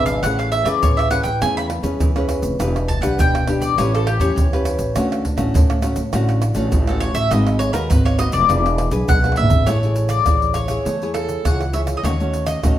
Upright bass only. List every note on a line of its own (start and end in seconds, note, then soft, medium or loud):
0.00 0.19 G#1 medium
0.23 0.61 A1 medium
0.64 0.78 E2 medium
0.82 1.20 A1 medium
1.24 1.38 A1 medium
1.42 1.79 E2 loud
1.83 1.97 E2 loud
2.00 2.38 E2 medium
2.42 2.56 F1 medium
2.59 2.97 E1 medium
3.01 3.15 B1 medium
3.18 3.56 E1 medium
3.60 3.74 E2 medium
3.78 4.15 A1 loud
4.20 4.33 E2 medium
4.36 4.74 E2 medium
4.79 4.92 A1 medium
4.95 5.33 D2 loud
5.37 5.51 A1 medium
5.54 5.92 D2 loud
5.96 6.10 D2 medium
6.13 6.51 A1 loud
6.55 6.69 A1 medium
6.72 7.10 A1 medium
7.14 7.28 A1 medium
7.31 7.69 G#1 loud
7.73 7.87 D#2 medium
7.90 8.28 G#1 medium
8.32 8.46 F1 medium
8.49 8.87 E1 loud
8.91 9.05 B1 loud
9.09 9.34 B1 medium
9.37 9.50 F#1 medium
9.50 9.65 G#1 medium
9.68 10.18 A1 loud
10.26 10.77 A1 medium
10.85 11.36 E2 medium
11.45 11.95 C#2 medium
12.03 12.54 D#2 loud
12.64 12.79 A1 medium